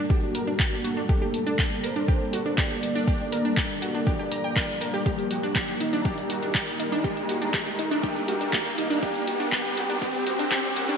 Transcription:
Already playing: analog synth pad G3 A#3 D4 A4, riser
0.10 analog synth lead F#4, synth arpeggio sound G4, kick
0.35 synth arpeggio sound A#4, open hi-hat
0.47 synth arpeggio sound D4
0.60 synth arpeggio sound G4, kick, clap
0.84 synth arpeggio sound F#4, open hi-hat
0.97 synth arpeggio sound D4
1.09 synth arpeggio sound G4, analog synth lead A4, kick
1.22 synth arpeggio sound G4
1.34 open hi-hat
1.47 synth arpeggio sound D4
1.59 synth arpeggio sound G4, kick, clap
1.83 synth arpeggio sound A#4, analog synth lead C5, open hi-hat
1.96 synth arpeggio sound D4
2.08 synth arpeggio sound G4, kick
2.33 synth arpeggio sound F#4, open hi-hat
2.46 synth arpeggio sound D4
2.58 synth arpeggio sound G4, analog synth lead D5, kick, clap
2.71 synth arpeggio sound G4
2.83 open hi-hat
2.95 synth arpeggio sound D4
3.08 synth arpeggio sound G4, kick
3.32 synth arpeggio sound A#4, open hi-hat
3.45 synth arpeggio sound D4
3.57 synth arpeggio sound G4, kick, clap
3.82 synth arpeggio sound F#4, open hi-hat
3.95 synth arpeggio sound D4
4.07 synth arpeggio sound G4, analog synth lead D5, kick
4.19 synth arpeggio sound G4
4.32 synth arpeggio sound A#5, open hi-hat
4.44 synth arpeggio sound G5
4.56 synth arpeggio sound A#4, kick, clap
4.81 synth arpeggio sound A#4, open hi-hat
4.94 synth arpeggio sound G4
5.06 analog synth pad D#4 A#4, synth arpeggio sound G4, analog synth lead G4, kick, closed hi-hat
5.19 closed hi-hat
5.31 synth arpeggio sound F#4, open hi-hat
5.43 synth arpeggio sound D4, closed hi-hat
5.55 synth arpeggio sound G4, kick, clap, closed hi-hat
5.68 synth arpeggio sound G4, closed hi-hat
5.80 analog synth lead D#4, open hi-hat
5.93 synth arpeggio sound D4, closed hi-hat
6.05 analog synth lead G4, synth arpeggio sound G4, kick, closed hi-hat
6.18 closed hi-hat
6.30 synth arpeggio sound F#4, open hi-hat
6.43 synth arpeggio sound D4, closed hi-hat
6.55 synth arpeggio sound G4, kick, clap, closed hi-hat
6.67 synth arpeggio sound G4, closed hi-hat
6.79 analog synth lead D#4, open hi-hat
6.92 synth arpeggio sound D4, closed hi-hat
7.04 analog synth lead G4, synth arpeggio sound G4, kick, closed hi-hat
7.17 closed hi-hat
7.29 synth arpeggio sound F#4, open hi-hat
7.42 synth arpeggio sound D4, closed hi-hat
7.54 synth arpeggio sound G4, kick, clap, closed hi-hat
7.66 synth arpeggio sound G4, closed hi-hat
7.79 analog synth lead D#4, open hi-hat
7.91 synth arpeggio sound D4, closed hi-hat
8.03 synth arpeggio sound G4, analog synth lead G4, kick, closed hi-hat
8.16 closed hi-hat
8.28 synth arpeggio sound F#4, open hi-hat
8.41 synth arpeggio sound D4, closed hi-hat
8.53 synth arpeggio sound G4, kick, clap, closed hi-hat
8.66 synth arpeggio sound G4, closed hi-hat
8.78 analog synth lead D#4, open hi-hat
8.90 synth arpeggio sound D4, closed hi-hat
9.03 synth arpeggio sound G4, analog synth lead G4, kick, closed hi-hat
9.15 closed hi-hat
9.27 synth arpeggio sound F#4, open hi-hat
9.40 synth arpeggio sound D4, closed hi-hat
9.52 analog synth lead G4, synth arpeggio sound G4, kick, clap, closed hi-hat
9.65 closed hi-hat
9.77 synth arpeggio sound F#4, open hi-hat
9.90 synth arpeggio sound D4, closed hi-hat
10.02 analog synth lead G4, synth arpeggio sound G4, kick, closed hi-hat
10.15 closed hi-hat
10.27 synth arpeggio sound F#4, open hi-hat
10.39 synth arpeggio sound D4, closed hi-hat
10.51 analog synth lead G4, synth arpeggio sound G4, kick, clap, closed hi-hat
10.64 closed hi-hat
10.76 synth arpeggio sound F#4, open hi-hat
10.89 synth arpeggio sound D4, closed hi-hat

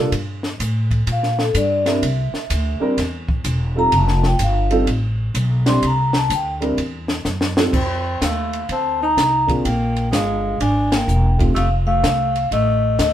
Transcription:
Already playing: upright bass C2, grand piano A4
0.12 upright bass G2, kick, ride
0.43 snare
0.59 upright bass A2, kick, hi-hat pedal, ride
0.91 kick, ride
1.07 upright bass A#2, kick, ride
1.12 vibraphone F5
1.23 snare
1.39 vibraphone A4, snare
1.54 upright bass G2, vibraphone D5, kick, hi-hat pedal, ride
1.86 grand piano G3 C4 D4 E4 A#4, vibraphone E5, snare, ride
2.02 upright bass C2, kick, ride
2.33 muted upright bass stroke, snare
2.50 upright bass D2, kick, hi-hat pedal, ride
2.80 grand piano G3 C4 D4 E4 A#4, muted upright bass stroke
2.97 upright bass E2, kick, snare, ride
3.29 kick
3.44 upright bass E1, kick, hi-hat pedal, ride
3.75 grand piano G3 C4 D#4 F4 A4, vibraphone A#5
3.92 upright bass F1, kick, ride
3.96 vibraphone A5
4.08 snare
4.23 vibraphone G5, snare
4.39 upright bass G1, kick, hi-hat pedal, ride
4.43 vibraphone F5
4.70 grand piano G3 C4 D#4 F4 A4, ride
4.87 upright bass A1, kick, ride
5.34 upright bass B1, kick, hi-hat pedal, ride
5.66 grand piano G3 C4 D4 E4 G4, vibraphone C6, snare, ride
5.82 upright bass C2, kick, ride
5.87 vibraphone A#5
6.13 vibraphone A5, snare
6.30 upright bass D2, kick, hi-hat pedal, ride
6.35 vibraphone G5
6.61 grand piano G3 C4 D4 E4 A#4, ride
6.77 upright bass E2, kick, ride
7.08 snare
7.25 upright bass F#2, snare, hi-hat pedal
7.41 snare
7.57 grand piano G3 C4 D#4 F4 A4, snare
7.73 upright bass F2, alto saxophone C4, vibraphone G5, kick, crash
8.21 upright bass D#2, alto saxophone A3, vibraphone F5, kick, snare, hi-hat pedal, ride
8.53 ride
8.69 upright bass D2, alto saxophone C4, vibraphone A5, kick, ride
9.03 alto saxophone D#4, vibraphone A#5
9.17 upright bass C2, kick, snare, hi-hat pedal, ride
9.47 grand piano A#3 C4 D4 F4 G#4, kick, ride
9.65 upright bass A#1, alto saxophone A#3, vibraphone G5, kick, ride
9.96 ride
10.11 upright bass G1, alto saxophone G#3, vibraphone F5, kick, snare, hi-hat pedal, ride
10.60 upright bass G#1, alto saxophone D4, vibraphone G#5, kick, ride
10.92 alto saxophone A#3, vibraphone G5, snare, ride
11.08 upright bass E1, hi-hat pedal
11.38 grand piano A3 C4 D#4 F4 G4, kick, ride
11.55 upright bass F1, alto saxophone A3, vibraphone F5, kick, ride
11.87 alto saxophone A3, vibraphone F5
12.03 upright bass C2, kick, snare, hi-hat pedal, ride
12.36 ride
12.51 upright bass A1, alto saxophone A3, vibraphone D#5, kick, ride
12.98 upright bass D2, alto saxophone A3, vibraphone D#5, kick, snare, hi-hat pedal, ride

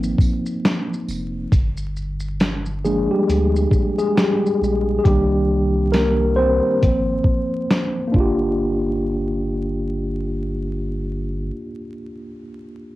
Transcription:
Already playing: analog synth bass G#1, tine electric piano F3 A#3 C4 D#4
0.03 shaker
0.18 kick, tambourine, shaker
0.46 shaker
0.65 snare, closed hi-hat, shaker
0.94 shaker
1.08 analog synth bass F1, tambourine, shaker
1.52 analog synth bass G1, kick, closed hi-hat, shaker
1.77 shaker
1.97 shaker
2.20 shaker
2.40 snare, closed hi-hat, shaker
2.66 shaker
2.85 tine electric piano F3 G#3 A#3 D4 G#4, shaker
3.11 tine electric piano G3 G4
3.29 analog synth bass D2, closed hi-hat, shaker
3.56 shaker
3.71 kick, shaker
3.98 tine electric piano G#3 G#4, shaker
4.16 tine electric piano G3 G4, snare, closed hi-hat, shaker
4.46 shaker
4.62 analog synth bass A#1, shaker
4.98 tine electric piano G#4
5.04 analog synth bass C2, tine electric piano D#3 G3 A#3 D4 G4, kick, closed hi-hat
5.92 tine electric piano A#3 A#4, snare, closed hi-hat
6.36 tine electric piano C4 C5
6.81 analog synth bass G#1, tine electric piano F3 A#3 C4, kick, closed hi-hat
7.24 kick
7.71 snare, closed hi-hat
8.08 tine electric piano A#3
8.12 analog synth bass G1, tine electric piano D4, kick
8.16 tine electric piano F4 G4

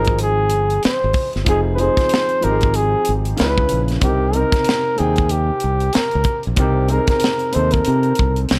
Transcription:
Already playing: fingered electric bass G#1, grand piano F3 C4 D#4 G4 G#4, flugelhorn A#4
0.05 kick, closed hi-hat
0.19 flugelhorn G#4, closed hi-hat
0.50 fingered electric bass G1, closed hi-hat
0.70 closed hi-hat
0.83 flugelhorn C5, muted fingered electric bass stroke, snare, closed hi-hat
1.04 fingered electric bass G#1
1.13 kick, open hi-hat
1.33 fingered electric bass G1, snare, closed hi-hat
1.45 fingered electric bass F1, grand piano F3 C4 D#4 G#4, kick, closed hi-hat
1.49 flugelhorn G#4
1.75 grand piano F3 C4, flugelhorn B4, closed hi-hat
1.80 grand piano D#4 G#4, flugelhorn C5
1.97 muted fingered electric bass stroke, kick, snare, closed hi-hat
2.09 closed hi-hat
2.14 snare
2.29 closed hi-hat
2.41 fingered electric bass G#1, grand piano F3 C4 D#4 G4, flugelhorn A#4, closed hi-hat
2.51 grand piano G#4
2.61 kick, closed hi-hat
2.74 flugelhorn G#4, closed hi-hat
3.05 fingered electric bass G#1, closed hi-hat
3.25 closed hi-hat
3.37 fingered electric bass C#2, grand piano C#3 C#4 D#4 B4, flugelhorn B4, snare, closed hi-hat
3.46 grand piano E4
3.58 kick
3.69 fingered electric bass A#1, closed hi-hat
3.88 snare, closed hi-hat
4.00 fingered electric bass C2, grand piano C3 C4 D#4 A#4, flugelhorn G4, kick, closed hi-hat
4.33 grand piano C3 C4 D#4 A#4, flugelhorn A#4, closed hi-hat
4.52 muted fingered electric bass stroke, kick, snare, closed hi-hat
4.65 closed hi-hat
4.69 snare
4.96 fingered electric bass D#2, grand piano C3 C4 D#4 G5, flugelhorn G#4, closed hi-hat
5.16 kick, closed hi-hat
5.29 flugelhorn G4, closed hi-hat
5.60 fingered electric bass C2, closed hi-hat
5.80 closed hi-hat
5.93 flugelhorn A#4, muted fingered electric bass stroke, snare, closed hi-hat
6.11 fingered electric bass C#2, closed hi-hat
6.24 kick, closed hi-hat
6.43 fingered electric bass A#1, closed hi-hat
6.56 fingered electric bass C2, grand piano C3 C4 D#4 A#4, flugelhorn G4, kick, closed hi-hat
6.88 grand piano C3 C4 D#4 G#4, flugelhorn A#4, closed hi-hat
6.99 grand piano A#4
7.07 flugelhorn A#4, muted fingered electric bass stroke, kick, snare, closed hi-hat
7.20 closed hi-hat
7.24 snare
7.39 closed hi-hat
7.52 fingered electric bass D#2, grand piano C3 C4 D#4 A4, flugelhorn C5, closed hi-hat
7.62 grand piano A#4
7.71 flugelhorn A#4, kick, closed hi-hat
7.85 fingered electric bass C3, closed hi-hat
8.03 closed hi-hat
8.15 kick, closed hi-hat
8.21 fingered electric bass C2
8.36 closed hi-hat
8.49 fingered electric bass C2, snare, closed hi-hat

